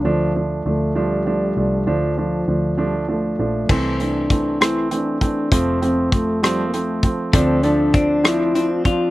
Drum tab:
CC |------|------|x-----|------|
HH |------|------|-xxxxx|xxxxxx|
SD |------|------|---r--|---r--|
BD |------|------|o-o--o|o-o--o|

CC |------|
HH |xxxxxx|
SD |---r--|
BD |o-o--o|